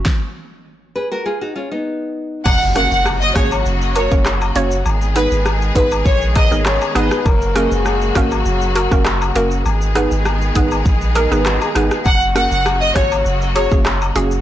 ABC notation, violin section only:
X:1
M:4/4
L:1/16
Q:1/4=100
K:F#mix
V:1 name="Violin section"
z16 | f z f f z d c z3 c z4 z | z2 B z3 B z c z d z4 z | z16 |
z16 | f z f f z d c z3 c z4 z |]